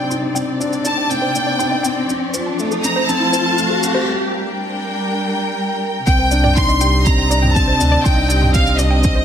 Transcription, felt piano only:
0.00 0.36 C4 medium
0.00 0.60 D4 medium
0.00 0.11 D#4 medium
0.11 0.35 D#4 medium
0.36 0.60 C4 medium
0.60 0.75 D4 medium
0.85 1.09 D#4 medium
1.11 1.34 C4 medium
1.36 1.59 D4 medium
1.60 1.84 D#4 medium
1.85 2.09 C4 medium
2.10 2.24 C4 medium
2.35 2.58 F4 medium
2.59 2.83 A3 medium
2.84 3.07 C4 medium
3.09 3.23 C4 medium
3.34 3.57 F4 medium
3.59 3.82 A3 medium
3.84 4.06 C4 medium
6.07 6.30 C4 medium
6.31 6.55 D4 loud
6.56 6.80 D#4 medium
6.81 7.05 G4 medium
7.06 7.29 C4 medium
7.30 7.54 D4 medium
7.55 7.79 C4 medium
7.80 8.04 D4 medium
8.05 8.28 D#4 medium
8.29 8.53 G4 medium
8.55 8.78 C4 medium
8.79 9.03 D4 medium
9.04 9.25 C4 medium

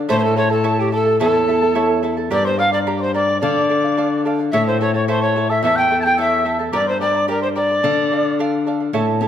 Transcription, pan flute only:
0.09 0.19 C5 loud
0.19 0.26 C5 medium
0.24 0.39 A4 medium
0.37 0.51 C#5 loud
0.52 0.81 A4 medium
0.79 0.93 G4 medium
0.94 1.19 A4 medium
1.21 2.00 A4 medium
2.33 2.47 D5 medium
2.46 2.60 C5 medium
2.59 2.73 F5 loud
2.73 2.79 D5 medium
2.98 3.14 C5 medium
2.98 3.03 D5 medium
3.14 3.40 D5 loud
3.41 4.21 D5 medium
4.52 4.65 E5 loud
4.67 4.80 C5 medium
4.81 4.94 C#5 medium
4.95 5.07 C#5 medium
5.08 5.24 C5 medium
5.22 5.52 C#5 medium
5.50 5.64 E5 medium
5.64 5.79 E5 loud
5.78 6.01 G5 loud
6.02 6.19 G5 medium
6.02 6.07 A5 medium
6.20 6.58 E5 loud
6.74 6.86 D5 medium
6.88 7.00 C5 medium
7.01 7.26 D5 medium
7.30 7.42 A#4 medium
7.43 7.49 C5 medium
7.56 8.34 D5 medium

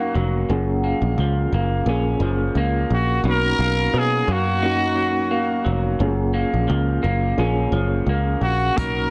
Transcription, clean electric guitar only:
0.00 0.50 B2 medium
0.00 0.15 F#3 soft
0.00 0.83 A#3 medium
0.00 0.58 D#4 medium
0.15 1.19 F#3 medium
0.50 3.26 F#2 medium
0.84 1.54 A#3 medium
1.20 2.21 F3 medium
1.54 2.57 A#3 medium
1.89 3.34 C#4 medium
2.22 2.92 F3 medium
2.57 3.59 A#3 medium
3.25 6.01 B2 medium
3.60 4.27 A#3 medium
3.95 4.95 F#3 medium
4.27 5.31 A#3 medium
4.63 6.09 D#4 medium
4.96 5.64 F#3 soft
5.31 6.33 A#3 medium
5.65 6.68 F#3 medium
6.00 8.77 F#2 medium
6.34 7.02 A#3 medium
6.68 7.72 F3 medium
7.03 8.09 A#3 medium
7.39 8.85 C#4 medium
7.73 8.42 F3 soft
8.09 9.10 A#3 medium
8.78 9.10 B2 medium

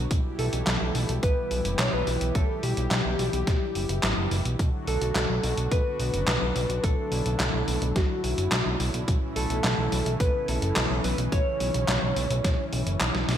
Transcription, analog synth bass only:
0.11 0.21 B1 loud
0.39 0.49 B1 loud
0.53 0.63 B1 medium
0.67 0.78 B1 loud
0.81 0.92 B1 medium
0.95 1.06 B1 medium
1.09 1.20 B1 medium
1.23 1.34 B1 loud
1.51 1.62 B1 medium
1.65 1.76 F#1 medium
1.79 1.90 B1 loud
1.93 2.04 B1 medium
2.07 2.18 B1 loud
2.21 2.32 B1 medium
2.35 2.46 B1 loud
2.63 2.74 B1 loud
2.77 2.88 B1 medium
2.91 3.02 B1 loud
3.05 3.16 B1 medium
3.19 3.30 B1 medium
3.33 3.44 B1 medium
3.47 3.58 B1 loud
3.75 3.86 F#1 medium
3.89 4.00 F#1 medium
4.03 4.14 A1 loud
4.17 4.28 F#1 medium
4.31 4.42 F#1 loud
4.45 4.56 B1 medium
4.59 4.70 B1 loud
4.87 4.98 B1 loud
5.01 5.12 B1 medium
5.16 5.26 B1 loud
5.30 5.40 B1 medium
5.44 5.54 B1 medium
5.58 5.68 B1 medium
5.71 5.82 B1 loud
6.00 6.10 B1 medium
6.14 6.24 F#1 medium
6.27 6.38 B1 loud
6.42 6.52 B1 medium
6.56 6.66 B1 loud
6.69 6.80 B1 medium
6.84 6.94 B1 loud
7.12 7.22 B1 medium
7.26 7.36 B1 medium
7.40 7.50 B1 loud
7.54 7.64 B1 medium
7.68 7.78 B1 medium
7.82 7.92 B1 medium
7.96 8.06 B1 loud
8.24 8.34 B1 medium
8.38 8.49 F#1 medium
8.52 8.62 B1 loud
8.66 8.77 B1 medium
8.80 8.91 B1 loud
8.94 9.05 B1 medium
9.08 9.19 B1 loud
9.36 9.47 B1 loud
9.50 9.61 B1 medium
9.64 9.75 B1 loud
9.78 9.89 B1 medium
9.92 10.03 B1 medium
10.06 10.17 B1 medium
10.20 10.31 B1 loud
10.48 10.59 B1 medium
10.62 10.73 F#1 medium
10.76 10.87 B1 loud
10.90 11.01 B1 medium
11.04 11.15 B1 loud
11.18 11.29 B1 medium
11.32 11.43 B1 loud
11.60 11.71 B1 loud
11.74 11.85 B1 medium
11.88 11.99 B1 loud
12.02 12.13 B1 medium
12.16 12.27 B1 medium
12.30 12.41 B1 medium
12.44 12.55 B1 loud
12.72 12.83 B1 medium
12.86 12.97 F#1 medium
13.00 13.11 B1 loud
13.15 13.25 B1 medium
13.29 13.38 B1 loud

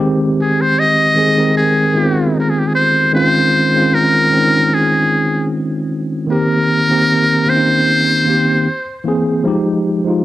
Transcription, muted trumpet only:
0.41 0.63 G#4 medium
0.61 0.81 C5 loud
0.79 1.57 D#5 loud
1.57 2.41 G#4 medium
2.40 2.51 A#4 medium
2.50 2.60 G#4 medium
2.59 2.69 G4 medium
2.67 2.74 G#4 medium
2.75 3.11 C5 loud
3.15 3.96 C5 loud
3.95 4.76 A#4 loud
4.74 5.51 G#4 medium
6.32 7.51 A#4 loud
7.50 9.06 C5 loud

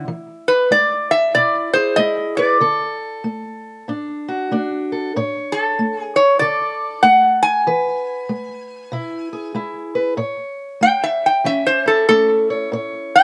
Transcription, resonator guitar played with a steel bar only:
0.48 0.71 B4 medium
0.72 1.08 D5 medium
1.11 1.32 E5 medium
1.35 1.73 D5 medium
1.73 1.97 C5 medium
1.96 2.37 D#5 medium
2.37 2.96 D5 medium
5.52 5.99 A4 medium
5.99 6.18 G#4 medium
6.16 6.39 C#5 medium
6.39 7.05 D5 medium
7.03 7.42 F#5 medium
7.43 9.52 G#5 medium
10.83 11.03 G5 loud
11.04 11.24 E5 medium
11.26 11.46 G5 medium
11.46 11.66 E5 medium
11.67 11.87 C5 medium
11.88 12.07 A4 medium
12.09 12.47 A4 medium
13.16 13.23 G5 medium

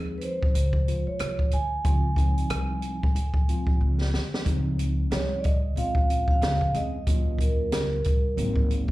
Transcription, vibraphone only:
0.00 0.20 G#4 medium
0.18 0.23 B4 medium
0.23 1.04 C5 medium
1.07 1.54 C#5 medium
1.53 3.77 G#5 loud
5.13 5.40 C#5 medium
5.40 5.45 D5 medium
5.44 5.78 D#5 medium
5.78 6.30 F5 loud
6.31 6.76 F5 loud
6.76 7.42 D#5 loud
7.41 8.67 A#4 medium

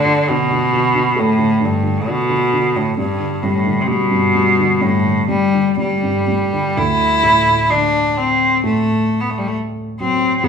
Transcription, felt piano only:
0.00 0.05 D3 medium
0.05 0.28 D3 medium
0.29 0.49 D3 medium
0.50 0.71 D3 medium
0.73 0.93 D3 soft
0.94 1.37 D3 soft
1.16 2.92 A3 medium
1.38 1.59 D3 soft
1.61 1.82 D3 soft
1.83 2.06 D3 medium
2.07 2.28 D3 medium
2.29 2.51 D3 medium
2.53 2.75 D3 soft
2.77 2.97 D3 soft
2.97 4.09 G2 medium
3.19 3.64 D3 soft
3.43 3.86 G3 soft
3.66 4.57 D3 soft
3.88 4.34 G3 soft
4.11 4.80 G2 soft
4.35 5.27 G3 soft
4.59 5.03 D3 soft
4.81 6.02 G2 medium
5.04 5.52 D3 soft
5.28 5.76 G3 soft
5.54 6.51 D3 soft
5.77 6.26 G3 soft
6.03 6.74 G2 soft
6.28 6.75 G3 soft
6.53 6.76 D3 soft
6.77 10.42 D2 medium
7.23 8.62 A2 soft
7.70 9.51 D3 soft
8.63 10.42 A2 soft
10.00 10.44 F#3 soft
10.43 10.48 E2 medium

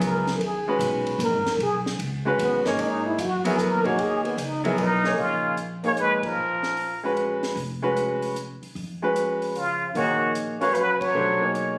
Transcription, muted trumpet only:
4.79 5.21 D#4 medium
5.19 5.58 F4 medium
5.86 5.92 C#5 loud
6.00 6.26 B4 loud
6.25 7.04 A#4 medium
9.57 9.93 F4 medium
9.96 10.32 F#4 medium
10.61 10.75 C#5 loud
10.74 11.01 B4 loud
11.00 11.78 C#5 medium

